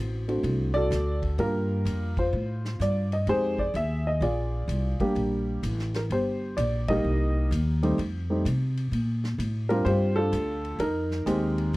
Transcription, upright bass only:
Already playing: A1
0.43 C2
0.91 D2
1.38 G2
1.85 F2
2.33 A2
2.80 G2
3.27 F2
3.74 D#2
4.21 A#1
4.68 C2
4.99 muted upright bass stroke
5.15 A#1
5.63 A1
6.10 G1
6.58 A#1
7.04 C2
7.51 D#2
7.98 F2
8.45 C3
8.92 A#2
9.38 A2
9.85 G2
10.32 D2
10.79 F2
11.26 D#2
11.73 A#1

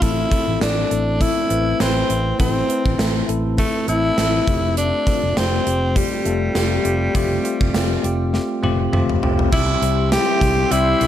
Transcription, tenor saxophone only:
0.02 E4
0.62 D4
1.22 E4
1.81 C4
2.40 C4
3.59 A3
3.89 E4
4.77 D4
5.37 C4
5.97 G3
9.53 E4
10.12 G4
10.72 E4

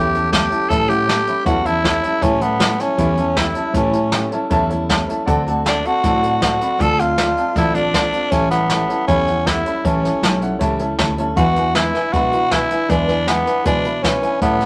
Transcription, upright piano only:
0.13 C#5 E5 A5
0.32 C#5 E5 A5
0.50 C#5 E5 A5
0.69 C#5 E5 A5
0.88 C#5 E5 F#5
1.06 C#5 E5 A5
1.28 C#5 E5 B5
1.45 C#5 E5 A5
1.64 C#5 E5 A5
1.83 C#5 E5 A5
2.02 C#5 E5 A5
2.21 C#5 E5 A5
2.41 C#5 E5 A5
2.59 C#5 E5 A5
2.79 C#5 E5 A5
2.97 C#5 E5 B5
3.17 C#5 E5 A5
3.35 C#5 E5 G5
3.54 C#5 E5 A5
3.73 C#5 E5 A5
3.92 C#5 E5 A5
4.12 C#5 E5 G5
4.31 C#5 E5 A5
4.50 C#5 E5 A5
4.70 C#5 E5 A5
4.90 C#5 E5 A5
5.08 C#5 E5 A5
5.26 D5 F#5 A5
5.47 D5 F#5 A5
5.67 F#5 A5
5.85 D5 F#5 A5
6.04 D5 F#5 A5
6.22 D5 A5
6.40 D5 F#5 A5
6.61 D5 F#5 B5
6.79 D5 F5 A5
7.00 A5
7.18 D5 F5 A5
7.37 D5 F5 A5
7.55 D5 F5 A5
7.74 D5 F5
7.93 D5 F5 A5
8.11 D5 F5 A5
8.30 C#5 E5 A5
8.50 C#5 E5 A5
8.70 C#5 E5 A5
8.89 C#5 E5 A5
9.08 C#5 E5 B5
9.27 E5 F#5
9.45 C#5 E5 F#5
9.66 C#5 E5 B5
9.84 C#5 E5 A5
10.03 C#5 E5 A5
10.23 C#5 E5 A5
10.41 C#5 E5 F#5
10.59 C#5 E5 A5
10.79 C#5 E5 A5
10.99 C#5 E5 A5
11.18 C#5 E5 A5
11.37 B4 E5 G#5
11.57 B4 E5 G#5
11.76 B4 E5 G#5
11.95 B4 E5 G#5
12.14 B4 E5 B5
12.32 B4 E5 B5
12.51 B4 E5 G#5
12.71 B4 E5 G#5
12.89 B4 E5 G#5
13.07 B4 E5 G#5
13.27 B4 E5 G#5
13.45 B4 E5 G#5
13.64 B4 E5 G#5
13.84 B4 E5 B5
14.03 B4 E5 B5
14.22 B4 E5 G#5
14.41 C#5 E5 A5
14.61 C#5 E5 A5

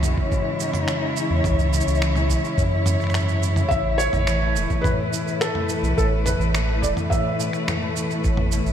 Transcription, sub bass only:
0.03 B1
1.30 E2
1.45 C#2
1.87 C#2
2.30 B1
2.57 F#2
3.71 A1
4.13 A1
4.55 E1
5.83 B1
5.98 A1
6.39 A1
6.83 E1
8.24 A1
8.66 A1

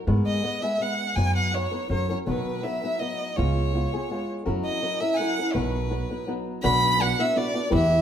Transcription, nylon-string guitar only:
0.07 G#2 D#3 G#3 B3 G#4 B4
0.43 G#3 B3 G#4 B4
0.62 G#3 B3 G#4 B4
0.80 G#3 B3 G#4 B4
1.17 F#3 B3 D#4 B4
1.53 F#3 B3 D#4 B4
1.72 B3 D#4 B4
1.89 F#3 C#4 F#4 A#4
2.10 C#4 F#4 A#4
2.26 B2 D#3 F#3 B3 D#4 B4
2.63 F#3 B3 D#4 B4
2.84 F#3 B3 D#4 B4
3.01 F#3 B3 D#4 B4
3.36 C#3 G#3 B3 F4 G#4
3.74 G#3 B3 F4 G#4
3.93 B3 F4 G#4
4.10 G#3 B3 F4 G#4
4.45 F#3 C#4 E4 A#4
4.82 F#3 C#4 E4 A#4
5.01 C#4 E4 A#4
5.19 F#3 C#4 E4 A#4
5.39 C#4 E4 A#4
5.54 B2 D#3 F#3 B3 D#4 B4
5.90 F#3 B3 D#4 B4
6.10 F#3 B3 D#4 B4
6.27 F#3 B3 D#4 B4
6.63 B2 F#3 B3 D4 F#4 B4
6.99 B3 D4 F#4 B4
7.19 B3 D4 F#4 B4
7.35 B3 D4 F#4 B4
7.54 B3 D4 F#4 B4
7.70 E3 B3 E4 G4 B4

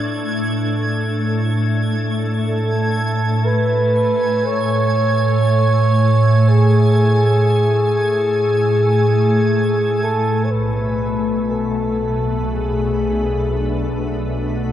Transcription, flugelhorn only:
2.46 A4
3.45 B4
4.46 C#5
6.49 G#4
10.02 A4
10.45 C#5
10.51 B4
11.51 A4
12.53 G#4
14.55 F#4

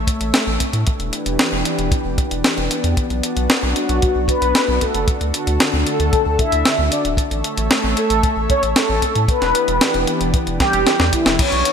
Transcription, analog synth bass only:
0.21 A1
0.47 A1
0.73 A2
1.00 E1
1.26 E1
1.52 E1
1.79 E1
2.05 E1
2.31 E1
2.58 E1
2.84 E2
3.10 B1
3.37 B1
3.63 B1
3.89 B1
4.16 B1
4.42 B1
4.68 B1
4.95 F#1
5.21 D2
5.47 D2
5.73 D2
6.00 D2
6.26 D2
6.52 D2
6.79 D2
7.05 D1
7.31 A1
7.58 A1
7.84 A1
8.10 A1
8.37 A1
8.63 A1
8.89 A1
9.16 A2
9.42 E1
9.68 E1
9.95 E1
10.21 E1
10.47 E1
10.73 E1
11.00 E2
11.26 E1
11.52 B1

